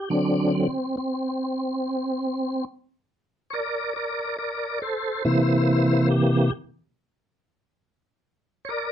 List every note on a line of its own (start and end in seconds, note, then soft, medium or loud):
0.10 0.67 D3 medium
0.10 0.67 F#3 soft
0.10 0.54 C4 medium
0.10 0.52 D4 medium
0.55 0.96 C4 medium
0.97 2.65 C4 medium
3.50 3.94 A#4 medium
3.50 3.55 C#5 medium
3.50 3.95 D5 medium
3.96 4.37 A#4 medium
3.96 4.37 D5 medium
4.38 4.79 A#4 medium
4.38 4.81 D5 medium
4.82 5.22 A4 medium
4.82 5.24 C5 medium
5.25 6.51 C3 medium
5.25 6.51 E3 soft
5.25 6.51 A#3 medium
5.25 5.64 E4 medium
5.25 5.64 C5 medium
5.65 6.07 E4 medium
5.65 6.09 C5 medium
6.10 6.53 G4 medium
8.65 8.92 A#4 medium
8.65 8.70 C#5 medium
8.69 8.92 D5 medium